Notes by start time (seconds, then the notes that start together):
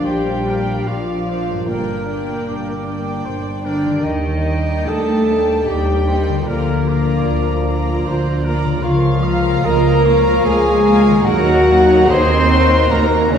Already playing: A#2 F3 A#3 D4 F4 A#4 D5 F5
0.04 A#1 G3 G4 C5 G5
0.47 A#3 D4 A#4 D5 F5
0.87 A#1 F3 D4 F4 D5 F5
1.29 A#3 D4 C5 D5 F5
1.51 G2
1.55 D4
1.60 G4
1.64 G1 G3 A#3 D4 A#4
1.68 A#2 A#3 D4 A#4 D5 G5
2.08 A#3 D4 D5 G5
2.47 G1 D5
2.87 A#3 D4 D5 G5
3.25 G1 C5
3.64 D3 A#3 D4 A#4 D5 G5
3.86 D#3
3.90 D4
3.94 G4
3.99 D#3 D#4 A#4
4.03 D#2 G3 D4 D#5 G5
4.45 A#3 D#4 D5 G5
4.86 D#2 A3 A4 D#5 A5
5.29 A#3 D#4 D5 G5
5.66 D#2 G3 D4 G4 D5 G5
6.07 A#3 D#4 C5 D5 G5
6.29 D3
6.33 D4
6.38 F4
6.42 D2 A#2 F3 A#3 D4 A#4
6.46 A#3 F4 A#4 D5 A#5
6.86 A#3 F4 D5 A#5
7.26 D2
7.66 A#3 F4 D5 A#5
8.04 D2 C5
8.44 A#3 F4 A#4 D5 A#5
8.64 C#3
8.69 A#3
8.73 F4
8.78 C#2 F3 F4 A#4 F5
8.82 F3 A#3 F4 C#5
9.22 A#3 F4 F5 A#5
9.63 C#2 A#3 A#4 D#5 A#5
10.04 A#3 F4 C#5 F5 A#5
10.45 C#2 G#3 G#4 G#5
10.84 A#3 F4 F5 A#5
11.08 D#3
11.12 C#4
11.17 D#4
11.21 D#2 F#3 F#4 A#4 F#5
11.25 D#3 A#3 D#4 F#4 A#4 C#5 A#5
11.68 A#3 D#4 C#5 A#5
12.10 D#2 C4 G#4 C5 C6
12.51 A#3 D#4 F#4 C#5 A#5
12.91 D#2 A#3 A#4 A#5
13.31 C#3 A#3 C#4 D#4 C#5 A#5